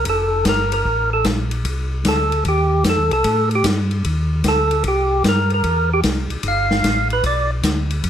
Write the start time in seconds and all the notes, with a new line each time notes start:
0.05 F1, kick, ride
0.09 A4
0.45 G1 A#4, kick, snare, hi-hat pedal, ride
0.72 A#4, ride
0.85 A1, kick
1.13 A4
1.24 A#1, kick, snare, hi-hat pedal, ride
1.51 ride
1.65 C2, kick, ride
2.05 D2 A4, kick, snare, hi-hat pedal, ride
2.32 ride
2.45 D#2 G4, kick, ride
2.84 F2, kick, snare, hi-hat pedal, ride
2.89 A4
2.98 D#2
3.11 C2 A4, ride
3.24 A2, kick, ride
3.51 ride
3.55 G4
3.64 G2, kick, snare, hi-hat pedal, ride
3.91 ride
4.04 D#2, kick, ride
4.44 D2, kick, snare, hi-hat pedal, ride
4.48 A4
4.71 ride
4.84 C2, kick, ride
4.88 G4
5.24 G2, kick, snare, hi-hat pedal, ride
5.29 A#4
5.50 ride
5.54 A#4
5.63 E2, kick, ride
5.94 G4
6.03 C2, kick, snare, hi-hat pedal, ride
6.30 C2, ride
6.43 G1, kick, ride
6.48 F5
6.71 snare
6.84 A1, kick, snare, hi-hat pedal, ride
7.10 B4, ride
7.23 B1 D5, kick, ride
7.63 D2, kick, snare, hi-hat pedal, ride
7.90 ride
8.03 F2, kick, ride